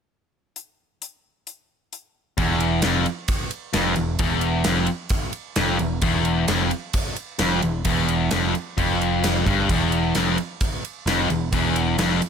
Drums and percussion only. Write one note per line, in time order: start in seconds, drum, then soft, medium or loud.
0.56 closed hi-hat medium
1.02 closed hi-hat medium
1.47 closed hi-hat medium
1.93 closed hi-hat medium
2.38 kick loud
2.38 ride medium
2.60 ride medium
2.82 snare loud
2.82 ride loud
3.06 ride medium
3.28 kick loud
3.28 ride medium
3.51 ride medium
3.73 snare loud
3.73 ride medium
3.96 ride medium
4.19 kick loud
4.19 ride medium
4.41 ride medium
4.64 snare loud
4.64 ride medium
4.86 ride medium
5.09 kick loud
5.09 ride medium
5.33 ride medium
5.56 snare loud
5.56 ride medium
5.79 ride medium
6.01 kick loud
6.01 ride medium
6.25 ride medium
6.48 snare loud
6.48 ride loud
6.71 ride medium
6.93 kick loud
6.93 ride loud
7.16 ride medium
7.39 snare loud
7.39 ride loud
7.62 ride medium
7.85 kick loud
7.85 ride loud
8.08 ride medium
8.31 snare loud
8.31 ride loud
8.55 ride medium
8.78 kick loud
8.78 ride medium
9.01 ride medium
9.24 snare loud
9.24 ride medium
9.47 kick loud
9.47 ride medium
9.69 kick loud
9.69 ride medium
9.92 ride medium
10.15 snare loud
10.15 ride loud
10.38 ride medium
10.61 kick loud
10.61 ride medium
10.85 ride medium
11.07 snare loud
11.07 ride medium
11.30 ride medium
11.53 kick loud
11.53 ride loud
11.76 ride medium
11.98 snare loud
11.98 ride loud
12.22 ride medium